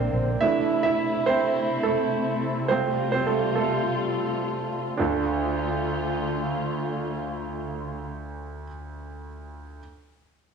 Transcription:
Already playing: D3 A#3 C4 D4 C5 D5
0.13 A#1
0.41 C3 E3 A3 D4 E4 E5
0.83 E4 E5
1.26 C4 C5
1.83 A3 A4
2.68 G3 A3 C4 F4 C5
3.12 C4 C5
3.27 A3 A4
3.56 A3 A4
4.97 D2 D3 A3 D4 F4
5.02 A4

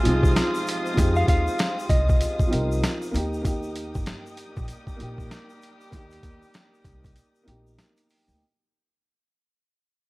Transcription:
Already playing: C3 F3 G#3 C4 D#4 F4 G4 G#4 C5 F5 G#5 D#6
0.03 C2 F3 C4 D#4 F4, closed hi-hat
0.08 G#4
0.23 kick, shaker
0.36 snare, closed hi-hat, shaker
0.55 shaker
0.67 closed hi-hat, shaker
0.86 shaker
0.94 F2 F3 C4 D#4 G4, kick, shaker
0.98 G#4, closed hi-hat
1.16 F5, shaker
1.28 D#2 F5, kick, closed hi-hat, shaker
1.47 shaker
1.59 snare, closed hi-hat, shaker
1.79 shaker
1.90 C2 D#5, kick, closed hi-hat, shaker
2.09 kick, shaker
2.21 closed hi-hat, shaker
2.39 kick, shaker
2.47 F3 C4 D#4 G4
2.52 C2 A#4, closed hi-hat
2.72 shaker
2.84 snare, closed hi-hat, shaker
3.02 shaker
3.12 D#2 A#3 D#4 A#4 G5 D#6, shaker
3.16 G4, closed hi-hat
3.33 shaker
3.42 A#3 D#4, kick, closed hi-hat, shaker
3.47 G4
3.63 shaker
3.76 closed hi-hat, shaker
3.95 G1, kick, shaker
4.06 snare, closed hi-hat, shaker
4.26 shaker
4.37 D#3 G3 A#3 G4, closed hi-hat, shaker
4.57 A#1, kick, shaker
4.68 closed hi-hat, shaker
4.87 kick, shaker
4.96 A#1 A#3 D#4, closed hi-hat
5.01 G4
5.18 kick, shaker
5.31 snare, closed hi-hat, shaker
5.50 shaker
5.62 closed hi-hat, shaker
5.81 shaker
5.90 D#2 A#3 D#4, kick, closed hi-hat, shaker
5.95 G4
6.11 closed hi-hat, shaker
6.23 D#2, kick, closed hi-hat, shaker
6.42 shaker
6.54 snare, closed hi-hat, shaker
6.74 shaker
6.85 C2, kick, closed hi-hat, shaker
7.04 kick, closed hi-hat, shaker
7.16 closed hi-hat, shaker
7.35 shaker
7.43 A#3 D#4
7.48 A#1 G4, closed hi-hat
7.67 shaker
7.79 snare, closed hi-hat, shaker
7.97 closed hi-hat, shaker
8.09 open hi-hat, shaker
8.28 D2, shaker

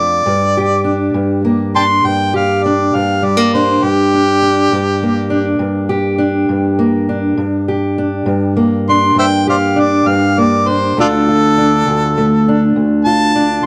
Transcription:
Already playing: F2 A3 D4 F4 D5
0.26 G2
0.57 G4
0.84 D4
1.14 G2
1.45 A#3
1.76 D4 G5 A5 C6
2.04 G2 G5
2.34 G4 F5
2.64 D4 D5
2.95 G2 F5
3.22 G3 D5
3.37 A#3
3.54 D4 C5
3.83 G2 G4
4.14 D4
4.42 D4
4.72 G2
5.03 A#3
5.30 D4
5.59 G2
5.89 G4
6.18 D4
6.49 G2
6.79 A#3
7.09 D4
7.37 G2
7.68 G4
7.98 D4
8.26 G2
8.57 A#3
8.89 D4 C6
9.15 G2 C5 E5 G5
9.47 G4 C5 D5 F5
9.76 D4 D5
10.06 G2 F5
10.38 A#3 D5
10.67 D4 C5
10.97 D2 D3 A3 D4 F4 A4
11.28 F4
11.58 D4
11.87 D2
12.18 A3
12.48 D4
12.76 D2
13.05 F4 A5
13.35 D4

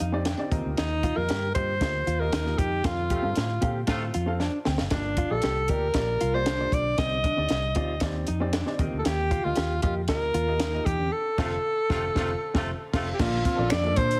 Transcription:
0.00 F2 D#4 F5, closed hi-hat
0.12 C4 D#4 G4 D5
0.25 D4 G5, snare, closed hi-hat
0.38 C4 D#4 G4 D5
0.50 D#2 D#3 A#3 C4 F4 G4 D#5 A#5, kick, closed hi-hat
0.65 D2
0.77 D#2 D#4, snare, closed hi-hat
1.03 F4, kick, closed hi-hat
1.15 F2 A#3 F4 G4 A#4 D#5
1.29 G2 G4, snare, closed hi-hat
1.54 G2 A#3 F4 G4 C5 D#5, kick, closed hi-hat
1.80 D2 A#3 F4 G4 D#5, kick, snare, closed hi-hat
2.07 D#2 F4, closed hi-hat
2.20 A#3 F4 G4 A#4 D#5
2.33 D#2 D#4, snare, closed hi-hat
2.44 A#3 F4 G4 D#5, snare
2.58 F2 G4, kick, closed hi-hat
2.84 F2 C4 F4 A4 F5, kick, snare, closed hi-hat
3.10 C3 A3 F4 G4, kick, closed hi-hat
3.22 G2 C4 F4 A4 F5
3.35 A2, snare, closed hi-hat
3.61 A#2 C4 F4 G4 A4 F5, kick, closed hi-hat
3.87 A2 C3 A3 C4 F4 A4 F5, kick, snare, closed hi-hat
4.14 F2 F4, closed hi-hat
4.26 C4 F4 A4 F5
4.40 D4 C5 A5, snare
4.65 D2 C4 G5, snare
4.78 F#1 A4 F5, snare
4.90 G2 A#3 D4 F4 G4 D5, kick, snare, closed hi-hat
5.17 F4, kick, closed hi-hat
5.30 A#1 A#3 F4 G4 A4 D5
5.42 C2 G4, snare, closed hi-hat
5.68 D2 A#3 F4 G4 A#4 D5, kick, closed hi-hat
5.94 A#1 A#3 F4 G4 D5, kick, snare, closed hi-hat
6.21 C2 F4, closed hi-hat
6.33 A#3 F4 G4 C5 D5
6.46 D4, snare, closed hi-hat
6.59 A#3 F4 G4 D5
6.72 B1 D5, kick, closed hi-hat
6.98 C2 C3 C4 D#4 G4 D5 D#5, kick, snare, closed hi-hat
7.24 D4, kick, closed hi-hat
7.37 D2 C4 D#4 G4 D5
7.49 C2, snare, closed hi-hat
7.75 D2 C4 D#4 F4 G4 D5, kick, closed hi-hat
8.00 D#2 C4 D#4 G4 D5, kick, snare, closed hi-hat
8.27 F2 D#4, closed hi-hat
8.40 C4 D#4 G4 D5
8.53 D4, snare, closed hi-hat
8.66 C4 D#4 G4 D5, snare
8.79 D#2 D#3 A#3 C4 F4 G4 D#5, kick, closed hi-hat
8.93 D2
8.98 A4
9.05 D#2 G4, snare, closed hi-hat
9.31 F4, kick, closed hi-hat
9.44 D2 A#3 F4 G4 D#5
9.55 D#2 G4, snare, closed hi-hat
9.82 F2 A#3 F4 G4 D#5, kick, closed hi-hat
10.08 D2 A#3 F4 G4 A#4 D#5, kick, snare, closed hi-hat
10.34 D#2 F4, closed hi-hat
10.47 A#3 F4 G4 D#5
10.60 D#4, snare, closed hi-hat
10.73 A#3 F4 G4 D#5
10.86 E2 G4, kick, closed hi-hat
11.12 A4
11.38 F1 C3 A3 C4 F4 A4 F5, kick, snare, crash
11.90 F1 C3 A3 C4 F4 A4 F5, kick, snare
12.15 F1 C3 A3 C4 F4 A4 F5, kick, snare
12.54 F1 C3 A3 C4 F4 A4, kick, snare
12.93 F1 C3 A3 C4 F4 A4 F5, kick, snare, crash
13.14 G4
13.19 A#1 A#2 F3 A#3 D4 F4 A4 D5, kick, snare, crash
13.45 C4 F4, kick, closed hi-hat
13.57 A#1 A#3 D4 F4 A4 D5
13.70 F2 D4 D5, finger snap, snare, closed hi-hat
13.83 A#3 D4 F4 A4 D5
13.96 A#2 C5, kick, closed hi-hat
14.11 closed hi-hat

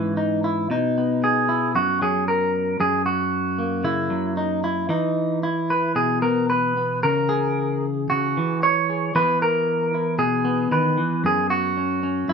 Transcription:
Already playing: G#2 E3 C#4 E4 F#4
0.17 D#4
0.44 E4
0.70 B2 D#4
0.98 B3
1.24 G#4
1.49 E4
1.75 F#2 F#4
2.01 F#3 G#4
2.28 A#4
2.80 F#2 G#4
3.06 F#4
3.58 A#3
3.84 C#3 E4
4.10 F#3
4.37 D#4
4.64 E4
4.89 E3 D#4
5.43 E4
5.70 B4
5.95 B2 G#4
6.22 B3 A#4
6.50 B4
6.77 B3
7.03 C#3 A#4
7.29 G#4
8.10 C#3 F#4
8.37 E3
8.63 C#5
8.90 G#4
9.15 E3 B3 E4 B4
9.42 A#4
9.94 E4
10.19 B2 G#4
10.45 B3
10.71 D#3 B4
10.97 E3
11.24 F#2 G#4
11.50 F#4
11.77 C#4
12.03 C#4
12.28 F#2 E4

